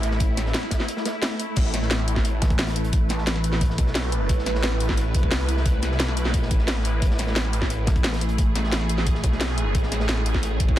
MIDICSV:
0, 0, Header, 1, 5, 480
1, 0, Start_track
1, 0, Key_signature, 0, "minor"
1, 0, Tempo, 340909
1, 284, Time_signature, 4, 2, 24, 8
1, 15192, End_track
2, 0, Start_track
2, 0, Title_t, "Synth drone"
2, 0, Program_c, 0, 95
2, 0, Note_on_c, 0, 57, 82
2, 0, Note_on_c, 0, 64, 77
2, 0, Note_on_c, 0, 76, 93
2, 2173, Note_off_c, 0, 76, 0
2, 2204, Note_on_c, 0, 71, 90
2, 9852, Note_off_c, 0, 71, 0
2, 9887, Note_on_c, 0, 68, 91
2, 15192, Note_off_c, 0, 57, 0
2, 15192, Note_off_c, 0, 64, 0
2, 15192, Note_off_c, 0, 68, 0
2, 15192, End_track
3, 0, Start_track
3, 0, Title_t, "Detuned saw bass"
3, 0, Program_c, 1, 39
3, 45, Note_on_c, 1, 33, 99
3, 745, Note_off_c, 1, 33, 0
3, 2206, Note_on_c, 1, 33, 96
3, 3386, Note_off_c, 1, 33, 0
3, 5325, Note_on_c, 1, 35, 98
3, 6026, Note_off_c, 1, 35, 0
3, 6045, Note_on_c, 1, 33, 98
3, 7226, Note_off_c, 1, 33, 0
3, 7246, Note_on_c, 1, 36, 98
3, 8583, Note_off_c, 1, 36, 0
3, 8583, Note_on_c, 1, 35, 98
3, 8963, Note_off_c, 1, 35, 0
3, 8963, Note_on_c, 1, 34, 98
3, 9146, Note_off_c, 1, 34, 0
3, 9165, Note_on_c, 1, 33, 98
3, 9866, Note_off_c, 1, 33, 0
3, 9885, Note_on_c, 1, 33, 99
3, 11066, Note_off_c, 1, 33, 0
3, 13005, Note_on_c, 1, 35, 99
3, 13706, Note_off_c, 1, 35, 0
3, 13725, Note_on_c, 1, 33, 97
3, 14906, Note_off_c, 1, 33, 0
3, 14925, Note_on_c, 1, 33, 97
3, 15192, Note_off_c, 1, 33, 0
3, 15192, End_track
4, 0, Start_track
4, 0, Title_t, "Wobble bass"
4, 0, Program_c, 2, 39
4, 3406, Note_on_c, 2, 33, 93
4, 5306, Note_off_c, 2, 33, 0
4, 11085, Note_on_c, 2, 33, 97
4, 12986, Note_off_c, 2, 33, 0
4, 15192, End_track
5, 0, Start_track
5, 0, Title_t, "Drums"
5, 45, Note_on_c, 9, 42, 93
5, 50, Note_off_c, 9, 42, 0
5, 50, Note_on_c, 9, 42, 70
5, 156, Note_on_c, 9, 38, 53
5, 191, Note_off_c, 9, 42, 0
5, 280, Note_on_c, 9, 42, 93
5, 286, Note_off_c, 9, 42, 0
5, 286, Note_on_c, 9, 36, 119
5, 286, Note_on_c, 9, 42, 87
5, 296, Note_off_c, 9, 38, 0
5, 427, Note_off_c, 9, 36, 0
5, 427, Note_off_c, 9, 42, 0
5, 523, Note_on_c, 9, 42, 69
5, 526, Note_off_c, 9, 42, 0
5, 526, Note_on_c, 9, 40, 38
5, 526, Note_on_c, 9, 42, 102
5, 647, Note_on_c, 9, 38, 44
5, 667, Note_off_c, 9, 40, 0
5, 667, Note_off_c, 9, 42, 0
5, 758, Note_on_c, 9, 42, 82
5, 762, Note_off_c, 9, 38, 0
5, 762, Note_on_c, 9, 38, 122
5, 766, Note_off_c, 9, 38, 0
5, 766, Note_off_c, 9, 42, 0
5, 766, Note_on_c, 9, 38, 115
5, 766, Note_on_c, 9, 42, 85
5, 885, Note_on_c, 9, 40, 34
5, 906, Note_off_c, 9, 38, 0
5, 906, Note_off_c, 9, 42, 0
5, 993, Note_on_c, 9, 38, 110
5, 1001, Note_on_c, 9, 42, 83
5, 1005, Note_off_c, 9, 42, 0
5, 1005, Note_on_c, 9, 42, 98
5, 1006, Note_on_c, 9, 36, 60
5, 1026, Note_off_c, 9, 40, 0
5, 1126, Note_off_c, 9, 38, 0
5, 1126, Note_on_c, 9, 38, 36
5, 1146, Note_off_c, 9, 42, 0
5, 1147, Note_off_c, 9, 36, 0
5, 1246, Note_on_c, 9, 42, 86
5, 1267, Note_off_c, 9, 38, 0
5, 1362, Note_on_c, 9, 38, 59
5, 1387, Note_off_c, 9, 42, 0
5, 1485, Note_off_c, 9, 38, 0
5, 1485, Note_on_c, 9, 38, 107
5, 1485, Note_on_c, 9, 42, 98
5, 1495, Note_off_c, 9, 42, 0
5, 1495, Note_on_c, 9, 42, 85
5, 1626, Note_off_c, 9, 38, 0
5, 1636, Note_off_c, 9, 42, 0
5, 1718, Note_on_c, 9, 38, 121
5, 1725, Note_off_c, 9, 38, 0
5, 1725, Note_on_c, 9, 38, 119
5, 1725, Note_on_c, 9, 42, 84
5, 1734, Note_off_c, 9, 42, 0
5, 1734, Note_on_c, 9, 42, 87
5, 1866, Note_off_c, 9, 38, 0
5, 1875, Note_off_c, 9, 42, 0
5, 1965, Note_on_c, 9, 42, 92
5, 1971, Note_off_c, 9, 42, 0
5, 1971, Note_on_c, 9, 42, 68
5, 2112, Note_off_c, 9, 42, 0
5, 2196, Note_on_c, 9, 42, 83
5, 2205, Note_off_c, 9, 42, 0
5, 2205, Note_on_c, 9, 42, 82
5, 2205, Note_on_c, 9, 49, 80
5, 2206, Note_on_c, 9, 36, 120
5, 2327, Note_on_c, 9, 38, 52
5, 2346, Note_off_c, 9, 42, 0
5, 2346, Note_off_c, 9, 49, 0
5, 2347, Note_off_c, 9, 36, 0
5, 2446, Note_on_c, 9, 40, 38
5, 2446, Note_on_c, 9, 42, 104
5, 2448, Note_off_c, 9, 42, 0
5, 2448, Note_on_c, 9, 42, 67
5, 2468, Note_off_c, 9, 38, 0
5, 2564, Note_on_c, 9, 38, 55
5, 2586, Note_off_c, 9, 40, 0
5, 2589, Note_off_c, 9, 42, 0
5, 2683, Note_on_c, 9, 42, 93
5, 2685, Note_off_c, 9, 38, 0
5, 2685, Note_on_c, 9, 38, 121
5, 2686, Note_off_c, 9, 38, 0
5, 2686, Note_off_c, 9, 42, 0
5, 2686, Note_on_c, 9, 38, 120
5, 2686, Note_on_c, 9, 42, 79
5, 2806, Note_on_c, 9, 40, 36
5, 2827, Note_off_c, 9, 38, 0
5, 2827, Note_off_c, 9, 42, 0
5, 2923, Note_on_c, 9, 42, 63
5, 2925, Note_off_c, 9, 42, 0
5, 2925, Note_on_c, 9, 42, 101
5, 2946, Note_off_c, 9, 40, 0
5, 3046, Note_on_c, 9, 36, 60
5, 3046, Note_on_c, 9, 38, 36
5, 3066, Note_off_c, 9, 42, 0
5, 3165, Note_on_c, 9, 42, 82
5, 3173, Note_off_c, 9, 42, 0
5, 3173, Note_on_c, 9, 42, 81
5, 3186, Note_off_c, 9, 36, 0
5, 3186, Note_off_c, 9, 38, 0
5, 3314, Note_off_c, 9, 42, 0
5, 3403, Note_on_c, 9, 38, 100
5, 3405, Note_on_c, 9, 36, 112
5, 3405, Note_on_c, 9, 42, 99
5, 3409, Note_off_c, 9, 42, 0
5, 3409, Note_on_c, 9, 42, 86
5, 3525, Note_off_c, 9, 42, 0
5, 3525, Note_on_c, 9, 42, 37
5, 3526, Note_off_c, 9, 36, 0
5, 3526, Note_on_c, 9, 36, 111
5, 3544, Note_off_c, 9, 38, 0
5, 3644, Note_off_c, 9, 42, 0
5, 3644, Note_on_c, 9, 38, 122
5, 3644, Note_on_c, 9, 42, 84
5, 3654, Note_off_c, 9, 42, 0
5, 3654, Note_on_c, 9, 42, 60
5, 3666, Note_off_c, 9, 36, 0
5, 3754, Note_off_c, 9, 42, 0
5, 3754, Note_on_c, 9, 42, 89
5, 3764, Note_off_c, 9, 38, 0
5, 3764, Note_on_c, 9, 38, 96
5, 3885, Note_off_c, 9, 42, 0
5, 3885, Note_on_c, 9, 42, 96
5, 3892, Note_off_c, 9, 42, 0
5, 3892, Note_on_c, 9, 42, 45
5, 3905, Note_off_c, 9, 38, 0
5, 4004, Note_off_c, 9, 42, 0
5, 4004, Note_on_c, 9, 42, 65
5, 4119, Note_off_c, 9, 42, 0
5, 4119, Note_on_c, 9, 42, 86
5, 4124, Note_off_c, 9, 42, 0
5, 4124, Note_on_c, 9, 42, 85
5, 4125, Note_on_c, 9, 36, 122
5, 4265, Note_off_c, 9, 42, 0
5, 4266, Note_off_c, 9, 36, 0
5, 4351, Note_on_c, 9, 42, 74
5, 4364, Note_off_c, 9, 42, 0
5, 4364, Note_on_c, 9, 40, 38
5, 4364, Note_on_c, 9, 42, 98
5, 4478, Note_on_c, 9, 38, 43
5, 4505, Note_off_c, 9, 40, 0
5, 4505, Note_off_c, 9, 42, 0
5, 4597, Note_on_c, 9, 42, 96
5, 4604, Note_off_c, 9, 38, 0
5, 4604, Note_off_c, 9, 42, 0
5, 4604, Note_on_c, 9, 38, 120
5, 4604, Note_on_c, 9, 42, 79
5, 4606, Note_off_c, 9, 38, 0
5, 4606, Note_on_c, 9, 38, 124
5, 4725, Note_on_c, 9, 40, 37
5, 4745, Note_off_c, 9, 42, 0
5, 4747, Note_off_c, 9, 38, 0
5, 4840, Note_on_c, 9, 42, 65
5, 4845, Note_off_c, 9, 42, 0
5, 4845, Note_on_c, 9, 42, 93
5, 4866, Note_off_c, 9, 40, 0
5, 4965, Note_on_c, 9, 38, 37
5, 4985, Note_off_c, 9, 42, 0
5, 5085, Note_on_c, 9, 36, 108
5, 5085, Note_on_c, 9, 42, 85
5, 5093, Note_off_c, 9, 42, 0
5, 5093, Note_on_c, 9, 42, 91
5, 5106, Note_off_c, 9, 38, 0
5, 5209, Note_on_c, 9, 38, 54
5, 5226, Note_off_c, 9, 36, 0
5, 5234, Note_off_c, 9, 42, 0
5, 5324, Note_on_c, 9, 42, 95
5, 5325, Note_off_c, 9, 42, 0
5, 5325, Note_on_c, 9, 36, 114
5, 5325, Note_on_c, 9, 42, 67
5, 5350, Note_off_c, 9, 38, 0
5, 5446, Note_on_c, 9, 38, 45
5, 5466, Note_off_c, 9, 36, 0
5, 5466, Note_off_c, 9, 42, 0
5, 5558, Note_off_c, 9, 38, 0
5, 5558, Note_on_c, 9, 38, 114
5, 5560, Note_on_c, 9, 42, 86
5, 5565, Note_off_c, 9, 38, 0
5, 5565, Note_off_c, 9, 42, 0
5, 5565, Note_on_c, 9, 38, 126
5, 5565, Note_on_c, 9, 42, 84
5, 5706, Note_off_c, 9, 38, 0
5, 5706, Note_off_c, 9, 42, 0
5, 5805, Note_on_c, 9, 42, 94
5, 5945, Note_off_c, 9, 42, 0
5, 6045, Note_on_c, 9, 42, 81
5, 6046, Note_on_c, 9, 36, 127
5, 6049, Note_off_c, 9, 42, 0
5, 6049, Note_on_c, 9, 42, 90
5, 6173, Note_on_c, 9, 38, 56
5, 6186, Note_off_c, 9, 36, 0
5, 6190, Note_off_c, 9, 42, 0
5, 6277, Note_on_c, 9, 42, 66
5, 6285, Note_off_c, 9, 42, 0
5, 6285, Note_on_c, 9, 40, 38
5, 6285, Note_on_c, 9, 42, 92
5, 6314, Note_off_c, 9, 38, 0
5, 6404, Note_on_c, 9, 38, 62
5, 6426, Note_off_c, 9, 40, 0
5, 6426, Note_off_c, 9, 42, 0
5, 6524, Note_on_c, 9, 42, 95
5, 6525, Note_off_c, 9, 38, 0
5, 6525, Note_off_c, 9, 42, 0
5, 6525, Note_on_c, 9, 38, 123
5, 6525, Note_on_c, 9, 42, 77
5, 6527, Note_off_c, 9, 38, 0
5, 6527, Note_on_c, 9, 38, 127
5, 6645, Note_on_c, 9, 40, 37
5, 6666, Note_off_c, 9, 42, 0
5, 6667, Note_off_c, 9, 38, 0
5, 6765, Note_on_c, 9, 42, 92
5, 6780, Note_off_c, 9, 42, 0
5, 6780, Note_on_c, 9, 42, 73
5, 6786, Note_off_c, 9, 40, 0
5, 6885, Note_on_c, 9, 36, 65
5, 6885, Note_on_c, 9, 38, 38
5, 6921, Note_off_c, 9, 42, 0
5, 7002, Note_on_c, 9, 42, 83
5, 7005, Note_off_c, 9, 42, 0
5, 7005, Note_on_c, 9, 42, 79
5, 7026, Note_off_c, 9, 36, 0
5, 7026, Note_off_c, 9, 38, 0
5, 7145, Note_off_c, 9, 42, 0
5, 7244, Note_on_c, 9, 42, 92
5, 7246, Note_on_c, 9, 36, 109
5, 7261, Note_off_c, 9, 42, 0
5, 7261, Note_on_c, 9, 42, 76
5, 7365, Note_off_c, 9, 36, 0
5, 7365, Note_on_c, 9, 36, 109
5, 7402, Note_off_c, 9, 42, 0
5, 7481, Note_on_c, 9, 38, 126
5, 7484, Note_on_c, 9, 42, 87
5, 7485, Note_off_c, 9, 38, 0
5, 7485, Note_off_c, 9, 42, 0
5, 7485, Note_on_c, 9, 38, 127
5, 7485, Note_on_c, 9, 42, 81
5, 7506, Note_off_c, 9, 36, 0
5, 7596, Note_off_c, 9, 42, 0
5, 7596, Note_on_c, 9, 42, 45
5, 7625, Note_off_c, 9, 38, 0
5, 7725, Note_off_c, 9, 42, 0
5, 7725, Note_on_c, 9, 42, 69
5, 7841, Note_on_c, 9, 38, 51
5, 7866, Note_off_c, 9, 42, 0
5, 7965, Note_on_c, 9, 36, 122
5, 7965, Note_on_c, 9, 42, 78
5, 7973, Note_off_c, 9, 42, 0
5, 7973, Note_on_c, 9, 42, 86
5, 7982, Note_off_c, 9, 38, 0
5, 8106, Note_off_c, 9, 36, 0
5, 8114, Note_off_c, 9, 42, 0
5, 8196, Note_on_c, 9, 42, 73
5, 8205, Note_off_c, 9, 42, 0
5, 8205, Note_on_c, 9, 40, 37
5, 8205, Note_on_c, 9, 42, 89
5, 8328, Note_on_c, 9, 38, 43
5, 8345, Note_off_c, 9, 40, 0
5, 8345, Note_off_c, 9, 42, 0
5, 8445, Note_off_c, 9, 38, 0
5, 8445, Note_on_c, 9, 38, 125
5, 8445, Note_on_c, 9, 42, 76
5, 8447, Note_off_c, 9, 38, 0
5, 8447, Note_on_c, 9, 38, 123
5, 8449, Note_off_c, 9, 42, 0
5, 8449, Note_on_c, 9, 42, 85
5, 8566, Note_on_c, 9, 40, 35
5, 8588, Note_off_c, 9, 38, 0
5, 8590, Note_off_c, 9, 42, 0
5, 8686, Note_on_c, 9, 42, 89
5, 8689, Note_off_c, 9, 42, 0
5, 8689, Note_on_c, 9, 42, 66
5, 8706, Note_off_c, 9, 40, 0
5, 8805, Note_on_c, 9, 38, 39
5, 8830, Note_off_c, 9, 42, 0
5, 8925, Note_on_c, 9, 36, 107
5, 8925, Note_on_c, 9, 42, 79
5, 8927, Note_off_c, 9, 42, 0
5, 8927, Note_on_c, 9, 42, 85
5, 8946, Note_off_c, 9, 38, 0
5, 9046, Note_on_c, 9, 38, 55
5, 9066, Note_off_c, 9, 36, 0
5, 9068, Note_off_c, 9, 42, 0
5, 9164, Note_on_c, 9, 42, 88
5, 9165, Note_on_c, 9, 36, 114
5, 9186, Note_off_c, 9, 38, 0
5, 9273, Note_on_c, 9, 38, 39
5, 9305, Note_off_c, 9, 42, 0
5, 9306, Note_off_c, 9, 36, 0
5, 9397, Note_off_c, 9, 38, 0
5, 9397, Note_on_c, 9, 38, 120
5, 9401, Note_on_c, 9, 42, 94
5, 9405, Note_off_c, 9, 38, 0
5, 9405, Note_off_c, 9, 42, 0
5, 9405, Note_on_c, 9, 38, 127
5, 9405, Note_on_c, 9, 42, 78
5, 9546, Note_off_c, 9, 38, 0
5, 9546, Note_off_c, 9, 42, 0
5, 9645, Note_on_c, 9, 42, 87
5, 9646, Note_off_c, 9, 42, 0
5, 9646, Note_on_c, 9, 42, 74
5, 9787, Note_off_c, 9, 42, 0
5, 9885, Note_on_c, 9, 36, 116
5, 9885, Note_on_c, 9, 42, 78
5, 9887, Note_off_c, 9, 42, 0
5, 9887, Note_on_c, 9, 42, 85
5, 10002, Note_on_c, 9, 38, 62
5, 10026, Note_off_c, 9, 36, 0
5, 10028, Note_off_c, 9, 42, 0
5, 10114, Note_on_c, 9, 42, 68
5, 10125, Note_off_c, 9, 42, 0
5, 10125, Note_on_c, 9, 40, 35
5, 10125, Note_on_c, 9, 42, 93
5, 10143, Note_off_c, 9, 38, 0
5, 10234, Note_on_c, 9, 38, 61
5, 10266, Note_off_c, 9, 40, 0
5, 10266, Note_off_c, 9, 42, 0
5, 10365, Note_off_c, 9, 38, 0
5, 10365, Note_on_c, 9, 38, 123
5, 10365, Note_on_c, 9, 42, 75
5, 10366, Note_off_c, 9, 42, 0
5, 10366, Note_on_c, 9, 42, 94
5, 10486, Note_on_c, 9, 40, 32
5, 10506, Note_off_c, 9, 38, 0
5, 10507, Note_off_c, 9, 42, 0
5, 10603, Note_on_c, 9, 42, 64
5, 10606, Note_off_c, 9, 42, 0
5, 10606, Note_on_c, 9, 42, 87
5, 10626, Note_off_c, 9, 40, 0
5, 10725, Note_on_c, 9, 36, 63
5, 10725, Note_on_c, 9, 38, 38
5, 10746, Note_off_c, 9, 42, 0
5, 10844, Note_on_c, 9, 42, 83
5, 10845, Note_off_c, 9, 42, 0
5, 10845, Note_on_c, 9, 42, 77
5, 10866, Note_off_c, 9, 36, 0
5, 10866, Note_off_c, 9, 38, 0
5, 10986, Note_off_c, 9, 42, 0
5, 11080, Note_on_c, 9, 38, 104
5, 11085, Note_on_c, 9, 36, 107
5, 11085, Note_on_c, 9, 42, 90
5, 11087, Note_off_c, 9, 42, 0
5, 11087, Note_on_c, 9, 42, 74
5, 11205, Note_off_c, 9, 36, 0
5, 11205, Note_on_c, 9, 36, 106
5, 11209, Note_off_c, 9, 42, 0
5, 11209, Note_on_c, 9, 42, 43
5, 11221, Note_off_c, 9, 38, 0
5, 11324, Note_off_c, 9, 42, 0
5, 11324, Note_on_c, 9, 38, 120
5, 11324, Note_on_c, 9, 42, 80
5, 11328, Note_off_c, 9, 42, 0
5, 11328, Note_on_c, 9, 42, 59
5, 11346, Note_off_c, 9, 36, 0
5, 11441, Note_off_c, 9, 38, 0
5, 11441, Note_on_c, 9, 38, 115
5, 11453, Note_off_c, 9, 42, 0
5, 11453, Note_on_c, 9, 42, 72
5, 11564, Note_off_c, 9, 42, 0
5, 11564, Note_on_c, 9, 42, 85
5, 11582, Note_off_c, 9, 38, 0
5, 11667, Note_off_c, 9, 42, 0
5, 11667, Note_on_c, 9, 42, 59
5, 11805, Note_off_c, 9, 42, 0
5, 11805, Note_on_c, 9, 36, 118
5, 11805, Note_on_c, 9, 42, 81
5, 11806, Note_off_c, 9, 42, 0
5, 11806, Note_on_c, 9, 42, 92
5, 11946, Note_off_c, 9, 36, 0
5, 11947, Note_off_c, 9, 42, 0
5, 12045, Note_on_c, 9, 40, 36
5, 12045, Note_on_c, 9, 42, 97
5, 12047, Note_off_c, 9, 42, 0
5, 12047, Note_on_c, 9, 42, 70
5, 12163, Note_on_c, 9, 38, 47
5, 12186, Note_off_c, 9, 40, 0
5, 12188, Note_off_c, 9, 42, 0
5, 12283, Note_on_c, 9, 42, 87
5, 12284, Note_off_c, 9, 38, 0
5, 12284, Note_off_c, 9, 42, 0
5, 12284, Note_on_c, 9, 38, 117
5, 12284, Note_on_c, 9, 42, 80
5, 12292, Note_off_c, 9, 38, 0
5, 12292, Note_on_c, 9, 38, 123
5, 12404, Note_on_c, 9, 40, 32
5, 12425, Note_off_c, 9, 42, 0
5, 12433, Note_off_c, 9, 38, 0
5, 12521, Note_on_c, 9, 42, 64
5, 12524, Note_off_c, 9, 42, 0
5, 12524, Note_on_c, 9, 42, 95
5, 12545, Note_off_c, 9, 40, 0
5, 12644, Note_on_c, 9, 38, 36
5, 12664, Note_off_c, 9, 42, 0
5, 12764, Note_on_c, 9, 42, 83
5, 12765, Note_on_c, 9, 36, 100
5, 12767, Note_off_c, 9, 42, 0
5, 12767, Note_on_c, 9, 42, 88
5, 12785, Note_off_c, 9, 38, 0
5, 12879, Note_on_c, 9, 38, 52
5, 12906, Note_off_c, 9, 36, 0
5, 12908, Note_off_c, 9, 42, 0
5, 13001, Note_on_c, 9, 42, 68
5, 13005, Note_off_c, 9, 42, 0
5, 13005, Note_on_c, 9, 36, 103
5, 13005, Note_on_c, 9, 42, 96
5, 13020, Note_off_c, 9, 38, 0
5, 13127, Note_on_c, 9, 38, 40
5, 13145, Note_off_c, 9, 42, 0
5, 13146, Note_off_c, 9, 36, 0
5, 13243, Note_on_c, 9, 42, 98
5, 13245, Note_off_c, 9, 38, 0
5, 13245, Note_off_c, 9, 42, 0
5, 13245, Note_on_c, 9, 38, 118
5, 13245, Note_on_c, 9, 42, 82
5, 13250, Note_off_c, 9, 38, 0
5, 13250, Note_on_c, 9, 38, 116
5, 13385, Note_off_c, 9, 42, 0
5, 13390, Note_off_c, 9, 38, 0
5, 13484, Note_on_c, 9, 42, 91
5, 13625, Note_off_c, 9, 42, 0
5, 13724, Note_on_c, 9, 42, 83
5, 13725, Note_on_c, 9, 36, 114
5, 13726, Note_off_c, 9, 42, 0
5, 13726, Note_on_c, 9, 42, 90
5, 13840, Note_on_c, 9, 38, 54
5, 13866, Note_off_c, 9, 36, 0
5, 13867, Note_off_c, 9, 42, 0
5, 13961, Note_on_c, 9, 42, 74
5, 13965, Note_off_c, 9, 42, 0
5, 13965, Note_on_c, 9, 40, 37
5, 13965, Note_on_c, 9, 42, 101
5, 13981, Note_off_c, 9, 38, 0
5, 14078, Note_on_c, 9, 38, 60
5, 14106, Note_off_c, 9, 40, 0
5, 14106, Note_off_c, 9, 42, 0
5, 14197, Note_on_c, 9, 42, 90
5, 14204, Note_off_c, 9, 38, 0
5, 14204, Note_off_c, 9, 42, 0
5, 14204, Note_on_c, 9, 38, 114
5, 14204, Note_on_c, 9, 42, 82
5, 14325, Note_on_c, 9, 40, 33
5, 14345, Note_off_c, 9, 38, 0
5, 14345, Note_off_c, 9, 42, 0
5, 14445, Note_on_c, 9, 42, 98
5, 14453, Note_off_c, 9, 42, 0
5, 14453, Note_on_c, 9, 42, 74
5, 14466, Note_off_c, 9, 40, 0
5, 14565, Note_on_c, 9, 36, 61
5, 14565, Note_on_c, 9, 38, 34
5, 14594, Note_off_c, 9, 42, 0
5, 14683, Note_on_c, 9, 42, 92
5, 14685, Note_off_c, 9, 42, 0
5, 14685, Note_on_c, 9, 42, 82
5, 14706, Note_off_c, 9, 36, 0
5, 14706, Note_off_c, 9, 38, 0
5, 14826, Note_off_c, 9, 42, 0
5, 14922, Note_on_c, 9, 42, 75
5, 14925, Note_off_c, 9, 42, 0
5, 14925, Note_on_c, 9, 36, 107
5, 14925, Note_on_c, 9, 42, 99
5, 15045, Note_off_c, 9, 36, 0
5, 15045, Note_on_c, 9, 36, 102
5, 15066, Note_off_c, 9, 42, 0
5, 15186, Note_off_c, 9, 36, 0
5, 15192, End_track
0, 0, End_of_file